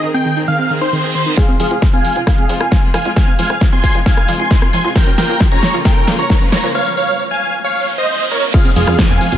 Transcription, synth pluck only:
0.03 D#3
0.14 C4
0.26 D#3
0.37 D#4
0.48 D#3
0.59 C4
0.70 D#3
0.81 D#4
0.93 D#3
1.04 C4
1.15 D#3
1.26 D#4
1.49 C4
1.60 F3
1.71 F4
1.82 F3
1.93 C4
2.05 F3
2.16 F4
2.27 F3
2.38 C4
2.49 F3
2.61 F4
2.72 F3
2.83 C4
2.94 F3
3.05 F4
3.17 F3
3.28 C4
3.39 F3
3.50 F4
3.61 F3
3.73 C4
3.84 F3
3.95 F4
4.06 F3
4.17 C4
4.28 F3
4.40 F4
4.51 F3
4.62 C4
4.73 F3
4.84 F4
4.96 F3
5.07 C#4
5.18 F3
5.29 F4
5.40 F3
5.52 C#4
5.63 F3
5.74 F4
5.96 C#4
6.08 F3
6.19 F4
6.30 F3
6.41 C#4
6.52 F3
6.64 F4
8.54 F3
8.65 C4
8.76 F3
8.87 F4
8.99 F3
9.10 C4
9.21 F3
9.32 F4

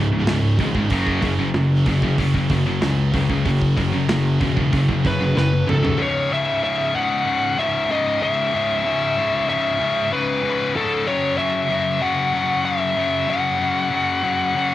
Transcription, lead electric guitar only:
5.07 B4
5.38 B4
5.70 A4
6.02 C#5
6.33 E5
6.64 E5
6.95 F#5
7.59 E5
7.91 D#5
8.23 E5
9.49 E5
10.13 B4
10.76 A4
11.07 C#5
11.38 E5
12.02 F#5
12.65 E5
13.30 F#5

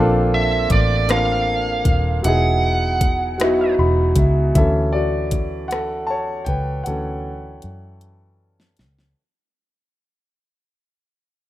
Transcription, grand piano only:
Already playing: A#3 C4 D4 F4 A4
1.08 A#3 C4 D4 F4
1.13 A#4
2.22 F#3 B3 D#4
2.27 E4 G#4
3.38 F#3 B3 D#4
3.42 E4 F#4
3.79 B5
4.18 E5
4.55 E3 F#3 C#4 A4 E5
4.93 F#4 D5
5.68 A4 F#5
6.07 C#5 A5
6.45 B4 G5
6.84 E3 F#3 C#4 A4 F#5

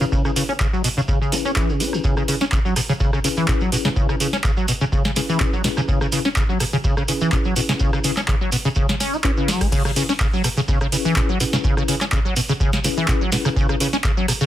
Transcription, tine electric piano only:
Already playing: C#4 E4 G#4 B4
0.36 C#4 E4 G#4 B4
1.32 C#4 E4 G#4 B4
1.56 C#4 E4 G#4 B4
1.80 C#4 E4 G#4 B4
2.28 C#4 E4 G#4 B4
3.24 C#4 E4 G#4 B4
3.48 C#4 E4 G#4 B4
3.72 C#4 E4 G#4 B4
4.20 C#4 E4 G#4 B4
5.16 C#4 E4 G#4 B4
5.40 C#4 E4 G#4 B4
5.64 C#4 E4 G#4 B4
6.12 C#4 E4 G#4 B4
7.08 C#4 E4 G#4 B4
7.32 C#4 E4 G#4 B4
7.56 C#4 E4 G#4 B4
8.04 C#4 E4 G#4 B4
9.24 C#4 E4 G#4 B4
9.37 C#4 E4 G#4 B4
9.96 C#4 E4 G#4 B4
10.92 C#4 E4 G#4 B4
11.16 C#4 E4 G#4 B4
11.40 C#4 E4 G#4 B4
11.88 C#4 E4 G#4 B4
12.84 C#4 E4 G#4 B4
13.08 C#4 E4 G#4 B4
13.32 C#4 E4 G#4 B4
13.80 C#4 E4 G#4 B4

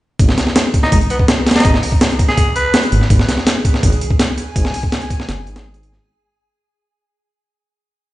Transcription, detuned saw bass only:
0.19 G#1
0.92 G#1
1.65 G#1
2.92 G#1
3.10 G#1
3.83 G#1
4.56 G#1
5.29 F#1
5.47 G#1
5.56 G#1

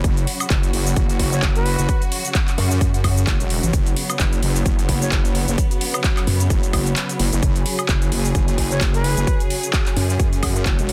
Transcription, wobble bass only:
0.04 F#1
0.50 F#1
0.73 F#1
0.96 F#1
1.43 F#1
1.79 F#1
2.58 F#2
2.81 F#2
3.27 F#1
3.40 E1
3.63 A1
3.73 F#1
4.20 F#1
4.43 F#1
4.66 F#1
5.12 F#1
5.48 F#1
6.27 F#2
6.50 F#1
7.20 F#1
7.33 F#1
7.43 F#1
7.89 F#1
8.12 F#1
8.35 F#1
8.81 F#1
9.17 F#1
9.96 F#2
10.20 F#2
10.66 F#1
10.79 E1

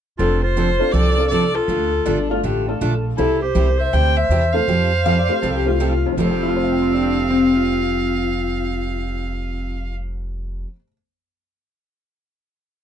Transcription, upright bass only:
0.19 F1
0.93 C2
1.68 D2
2.07 G1
2.44 A1
2.81 A#1
3.19 C2
3.55 C2
3.93 D2
4.29 E2
4.68 F2
5.43 C2
6.17 F1

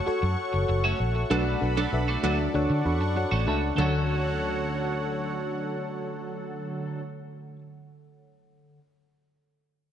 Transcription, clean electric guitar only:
0.07 muted clean electric guitar stroke
0.22 muted clean electric guitar stroke
0.53 muted clean electric guitar stroke
0.69 muted clean electric guitar stroke
0.84 A3 C#4 F#4
1.00 muted clean electric guitar stroke
1.15 muted clean electric guitar stroke
1.31 A3 D4 F#4
1.62 muted clean electric guitar stroke
1.77 A3 D4 F#4
1.93 muted clean electric guitar stroke
2.08 A3 D4 F#4
2.23 A3 D4 F#4
2.39 muted clean electric guitar stroke
2.55 muted clean electric guitar stroke
2.70 muted clean electric guitar stroke
3.01 muted clean electric guitar stroke
3.16 muted clean electric guitar stroke
3.31 A3 C#4 F#4
3.47 A3 C#4 F#4
3.77 A3 C#4
3.82 F#4

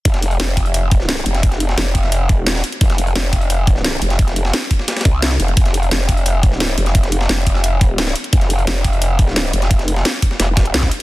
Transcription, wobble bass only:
0.05 F1
0.40 F1
1.26 F1
1.78 F1
2.38 E1
2.81 F1
3.16 F1
4.02 F1
5.05 C2
5.40 F1
5.57 F1
5.91 F1
6.78 F1
7.29 F1
8.33 F1
8.67 F1
9.53 F1
10.40 F1
10.74 C2

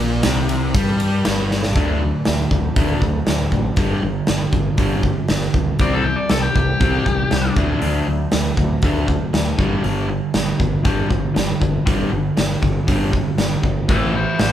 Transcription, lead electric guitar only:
5.81 D5
5.93 A4
6.04 G4
6.16 D5
6.30 A4
6.43 G4
6.56 G4
13.90 E4 C5
14.15 E4 C5
14.40 E4 C5

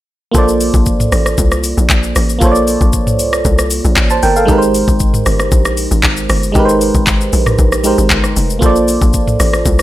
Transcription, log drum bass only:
0.35 A#1
0.74 A#1
1.12 A1
1.38 C2
1.77 A#1
1.90 A#1
2.16 A1
2.42 A#1
2.81 A#1
3.19 C2
3.45 C2
3.85 A#1
3.97 A1
4.23 G1
4.48 G#1
4.88 G#1
5.26 G1
5.52 A#1
5.91 G#1
6.03 G#1
6.30 G1
6.55 G#1
6.95 G#1
7.33 A#1
7.59 A#1
7.98 G#1
8.10 G1
8.36 F1
8.62 A#1
9.02 A#1
9.40 A1
9.66 C2

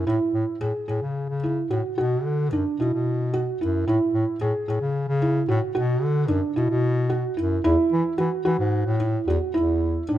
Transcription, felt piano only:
0.07 E4
0.61 G#4
0.88 G#4
1.43 E4
1.70 F#4
1.98 F#4
2.53 D4
2.80 E4
3.33 F#4
3.61 E4
3.88 E4
4.41 G#4
4.68 G#4
5.22 E4
5.48 F#4
5.75 F#4
6.28 D4
6.56 E4
7.10 F#4
7.37 E4
7.64 E4
8.18 F#4
8.45 F#4
9.00 E4
9.28 F#4
9.54 E4
10.09 D4

